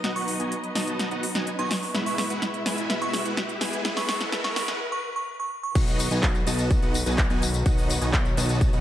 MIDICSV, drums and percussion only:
0, 0, Header, 1, 2, 480
1, 0, Start_track
1, 0, Tempo, 476190
1, 40, Time_signature, 4, 2, 24, 8
1, 8876, End_track
2, 0, Start_track
2, 0, Title_t, "Drums"
2, 40, Note_on_c, 9, 38, 60
2, 40, Note_on_c, 9, 42, 54
2, 141, Note_off_c, 9, 38, 0
2, 141, Note_off_c, 9, 42, 0
2, 161, Note_on_c, 9, 46, 63
2, 261, Note_off_c, 9, 46, 0
2, 281, Note_on_c, 9, 46, 108
2, 382, Note_off_c, 9, 46, 0
2, 402, Note_on_c, 9, 42, 52
2, 503, Note_off_c, 9, 42, 0
2, 522, Note_on_c, 9, 42, 52
2, 623, Note_off_c, 9, 42, 0
2, 641, Note_on_c, 9, 42, 27
2, 742, Note_off_c, 9, 42, 0
2, 761, Note_on_c, 9, 38, 67
2, 761, Note_on_c, 9, 46, 113
2, 861, Note_off_c, 9, 38, 0
2, 861, Note_off_c, 9, 46, 0
2, 882, Note_on_c, 9, 42, 53
2, 982, Note_off_c, 9, 42, 0
2, 1002, Note_on_c, 9, 38, 66
2, 1002, Note_on_c, 9, 42, 52
2, 1103, Note_off_c, 9, 38, 0
2, 1103, Note_off_c, 9, 42, 0
2, 1122, Note_on_c, 9, 42, 27
2, 1223, Note_off_c, 9, 42, 0
2, 1241, Note_on_c, 9, 46, 107
2, 1342, Note_off_c, 9, 46, 0
2, 1362, Note_on_c, 9, 38, 61
2, 1362, Note_on_c, 9, 42, 54
2, 1463, Note_off_c, 9, 38, 0
2, 1463, Note_off_c, 9, 42, 0
2, 1481, Note_on_c, 9, 42, 53
2, 1582, Note_off_c, 9, 42, 0
2, 1602, Note_on_c, 9, 42, 28
2, 1703, Note_off_c, 9, 42, 0
2, 1721, Note_on_c, 9, 38, 71
2, 1721, Note_on_c, 9, 46, 110
2, 1822, Note_off_c, 9, 38, 0
2, 1822, Note_off_c, 9, 46, 0
2, 1841, Note_on_c, 9, 46, 63
2, 1942, Note_off_c, 9, 46, 0
2, 1961, Note_on_c, 9, 38, 74
2, 1961, Note_on_c, 9, 42, 52
2, 2062, Note_off_c, 9, 38, 0
2, 2062, Note_off_c, 9, 42, 0
2, 2080, Note_on_c, 9, 46, 65
2, 2181, Note_off_c, 9, 46, 0
2, 2200, Note_on_c, 9, 38, 75
2, 2200, Note_on_c, 9, 46, 113
2, 2301, Note_off_c, 9, 38, 0
2, 2301, Note_off_c, 9, 46, 0
2, 2320, Note_on_c, 9, 42, 51
2, 2421, Note_off_c, 9, 42, 0
2, 2440, Note_on_c, 9, 38, 79
2, 2440, Note_on_c, 9, 42, 52
2, 2541, Note_off_c, 9, 38, 0
2, 2541, Note_off_c, 9, 42, 0
2, 2560, Note_on_c, 9, 42, 25
2, 2661, Note_off_c, 9, 42, 0
2, 2680, Note_on_c, 9, 38, 84
2, 2680, Note_on_c, 9, 46, 116
2, 2781, Note_off_c, 9, 38, 0
2, 2781, Note_off_c, 9, 46, 0
2, 2802, Note_on_c, 9, 42, 50
2, 2902, Note_off_c, 9, 42, 0
2, 2921, Note_on_c, 9, 38, 85
2, 2921, Note_on_c, 9, 42, 51
2, 3022, Note_off_c, 9, 38, 0
2, 3022, Note_off_c, 9, 42, 0
2, 3041, Note_on_c, 9, 42, 26
2, 3141, Note_off_c, 9, 42, 0
2, 3160, Note_on_c, 9, 38, 86
2, 3160, Note_on_c, 9, 46, 109
2, 3261, Note_off_c, 9, 38, 0
2, 3261, Note_off_c, 9, 46, 0
2, 3281, Note_on_c, 9, 42, 54
2, 3382, Note_off_c, 9, 42, 0
2, 3401, Note_on_c, 9, 38, 87
2, 3401, Note_on_c, 9, 42, 50
2, 3501, Note_off_c, 9, 38, 0
2, 3501, Note_off_c, 9, 42, 0
2, 3520, Note_on_c, 9, 42, 27
2, 3621, Note_off_c, 9, 42, 0
2, 3639, Note_on_c, 9, 38, 91
2, 3639, Note_on_c, 9, 46, 111
2, 3740, Note_off_c, 9, 38, 0
2, 3740, Note_off_c, 9, 46, 0
2, 3760, Note_on_c, 9, 42, 51
2, 3861, Note_off_c, 9, 42, 0
2, 3880, Note_on_c, 9, 38, 97
2, 3880, Note_on_c, 9, 42, 52
2, 3980, Note_off_c, 9, 38, 0
2, 3980, Note_off_c, 9, 42, 0
2, 4000, Note_on_c, 9, 38, 84
2, 4000, Note_on_c, 9, 46, 65
2, 4101, Note_off_c, 9, 38, 0
2, 4101, Note_off_c, 9, 46, 0
2, 4119, Note_on_c, 9, 38, 96
2, 4119, Note_on_c, 9, 46, 110
2, 4220, Note_off_c, 9, 38, 0
2, 4220, Note_off_c, 9, 46, 0
2, 4239, Note_on_c, 9, 38, 84
2, 4239, Note_on_c, 9, 42, 51
2, 4340, Note_off_c, 9, 38, 0
2, 4340, Note_off_c, 9, 42, 0
2, 4359, Note_on_c, 9, 38, 94
2, 4359, Note_on_c, 9, 42, 49
2, 4460, Note_off_c, 9, 38, 0
2, 4460, Note_off_c, 9, 42, 0
2, 4479, Note_on_c, 9, 38, 86
2, 4479, Note_on_c, 9, 42, 26
2, 4580, Note_off_c, 9, 38, 0
2, 4580, Note_off_c, 9, 42, 0
2, 4599, Note_on_c, 9, 38, 104
2, 4599, Note_on_c, 9, 46, 114
2, 4700, Note_off_c, 9, 38, 0
2, 4700, Note_off_c, 9, 46, 0
2, 4719, Note_on_c, 9, 38, 87
2, 4719, Note_on_c, 9, 42, 50
2, 4820, Note_off_c, 9, 38, 0
2, 4820, Note_off_c, 9, 42, 0
2, 5800, Note_on_c, 9, 36, 118
2, 5800, Note_on_c, 9, 42, 56
2, 5800, Note_on_c, 9, 49, 105
2, 5807, Note_on_c, 9, 54, 46
2, 5901, Note_off_c, 9, 36, 0
2, 5901, Note_off_c, 9, 42, 0
2, 5901, Note_off_c, 9, 49, 0
2, 5908, Note_off_c, 9, 54, 0
2, 5919, Note_on_c, 9, 46, 64
2, 5927, Note_on_c, 9, 54, 23
2, 6020, Note_off_c, 9, 46, 0
2, 6028, Note_off_c, 9, 54, 0
2, 6039, Note_on_c, 9, 46, 110
2, 6047, Note_on_c, 9, 54, 79
2, 6140, Note_off_c, 9, 46, 0
2, 6147, Note_off_c, 9, 54, 0
2, 6160, Note_on_c, 9, 42, 57
2, 6167, Note_on_c, 9, 54, 33
2, 6260, Note_off_c, 9, 42, 0
2, 6268, Note_off_c, 9, 54, 0
2, 6279, Note_on_c, 9, 42, 54
2, 6280, Note_on_c, 9, 36, 118
2, 6280, Note_on_c, 9, 39, 122
2, 6287, Note_on_c, 9, 54, 45
2, 6380, Note_off_c, 9, 42, 0
2, 6381, Note_off_c, 9, 36, 0
2, 6381, Note_off_c, 9, 39, 0
2, 6388, Note_off_c, 9, 54, 0
2, 6400, Note_on_c, 9, 42, 29
2, 6407, Note_on_c, 9, 54, 22
2, 6500, Note_off_c, 9, 42, 0
2, 6508, Note_off_c, 9, 54, 0
2, 6519, Note_on_c, 9, 46, 109
2, 6526, Note_on_c, 9, 54, 81
2, 6619, Note_off_c, 9, 46, 0
2, 6627, Note_off_c, 9, 54, 0
2, 6639, Note_on_c, 9, 42, 56
2, 6647, Note_on_c, 9, 54, 33
2, 6740, Note_off_c, 9, 42, 0
2, 6748, Note_off_c, 9, 54, 0
2, 6760, Note_on_c, 9, 36, 123
2, 6760, Note_on_c, 9, 42, 57
2, 6767, Note_on_c, 9, 54, 47
2, 6860, Note_off_c, 9, 42, 0
2, 6861, Note_off_c, 9, 36, 0
2, 6868, Note_off_c, 9, 54, 0
2, 6880, Note_on_c, 9, 42, 27
2, 6887, Note_on_c, 9, 54, 23
2, 6980, Note_off_c, 9, 42, 0
2, 6988, Note_off_c, 9, 54, 0
2, 6999, Note_on_c, 9, 46, 105
2, 7006, Note_on_c, 9, 54, 80
2, 7099, Note_off_c, 9, 46, 0
2, 7107, Note_off_c, 9, 54, 0
2, 7120, Note_on_c, 9, 42, 55
2, 7127, Note_on_c, 9, 54, 35
2, 7221, Note_off_c, 9, 42, 0
2, 7228, Note_off_c, 9, 54, 0
2, 7240, Note_on_c, 9, 36, 124
2, 7240, Note_on_c, 9, 42, 56
2, 7241, Note_on_c, 9, 39, 124
2, 7248, Note_on_c, 9, 54, 45
2, 7341, Note_off_c, 9, 36, 0
2, 7341, Note_off_c, 9, 39, 0
2, 7341, Note_off_c, 9, 42, 0
2, 7348, Note_off_c, 9, 54, 0
2, 7361, Note_on_c, 9, 42, 29
2, 7368, Note_on_c, 9, 54, 23
2, 7462, Note_off_c, 9, 42, 0
2, 7469, Note_off_c, 9, 54, 0
2, 7480, Note_on_c, 9, 46, 111
2, 7488, Note_on_c, 9, 54, 82
2, 7581, Note_off_c, 9, 46, 0
2, 7588, Note_off_c, 9, 54, 0
2, 7600, Note_on_c, 9, 42, 54
2, 7607, Note_on_c, 9, 54, 34
2, 7701, Note_off_c, 9, 42, 0
2, 7708, Note_off_c, 9, 54, 0
2, 7719, Note_on_c, 9, 42, 56
2, 7720, Note_on_c, 9, 36, 125
2, 7726, Note_on_c, 9, 54, 45
2, 7820, Note_off_c, 9, 42, 0
2, 7821, Note_off_c, 9, 36, 0
2, 7827, Note_off_c, 9, 54, 0
2, 7839, Note_on_c, 9, 46, 65
2, 7847, Note_on_c, 9, 54, 22
2, 7940, Note_off_c, 9, 46, 0
2, 7948, Note_off_c, 9, 54, 0
2, 7960, Note_on_c, 9, 46, 113
2, 7967, Note_on_c, 9, 54, 80
2, 8060, Note_off_c, 9, 46, 0
2, 8068, Note_off_c, 9, 54, 0
2, 8079, Note_on_c, 9, 42, 54
2, 8086, Note_on_c, 9, 54, 33
2, 8180, Note_off_c, 9, 42, 0
2, 8187, Note_off_c, 9, 54, 0
2, 8200, Note_on_c, 9, 36, 127
2, 8200, Note_on_c, 9, 42, 54
2, 8201, Note_on_c, 9, 39, 126
2, 8208, Note_on_c, 9, 54, 43
2, 8301, Note_off_c, 9, 36, 0
2, 8301, Note_off_c, 9, 39, 0
2, 8301, Note_off_c, 9, 42, 0
2, 8308, Note_off_c, 9, 54, 0
2, 8320, Note_on_c, 9, 42, 27
2, 8327, Note_on_c, 9, 54, 22
2, 8420, Note_off_c, 9, 42, 0
2, 8428, Note_off_c, 9, 54, 0
2, 8439, Note_on_c, 9, 46, 114
2, 8447, Note_on_c, 9, 54, 79
2, 8540, Note_off_c, 9, 46, 0
2, 8548, Note_off_c, 9, 54, 0
2, 8560, Note_on_c, 9, 42, 54
2, 8567, Note_on_c, 9, 54, 33
2, 8660, Note_off_c, 9, 42, 0
2, 8668, Note_off_c, 9, 54, 0
2, 8680, Note_on_c, 9, 36, 126
2, 8681, Note_on_c, 9, 42, 55
2, 8688, Note_on_c, 9, 54, 44
2, 8781, Note_off_c, 9, 36, 0
2, 8781, Note_off_c, 9, 42, 0
2, 8789, Note_off_c, 9, 54, 0
2, 8801, Note_on_c, 9, 42, 26
2, 8808, Note_on_c, 9, 54, 22
2, 8876, Note_off_c, 9, 42, 0
2, 8876, Note_off_c, 9, 54, 0
2, 8876, End_track
0, 0, End_of_file